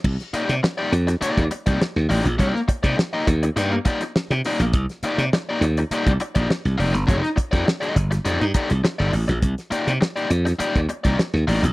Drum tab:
CC |x---------------|----------------|----------------|----------------|
HH |-xxx--xxxxxx--ox|x-xx--xxx-xx-xox|xxxx--xxxxxx-xox|xxxx-xxxxxxx--ox|
SD |-o--o--o---ooo-o|-o--o------ooooo|-o--o------ooo-o|-o--o--o---ooooo|
BD |o--------o-o----|o-oo--o---o-----|o--------o-o----|o-oo--o---o-----|

CC |----------------|
HH |xxxx-xxxxxxx--ox|
SD |-o--o--o---ooo-o|
BD |o--------o-o----|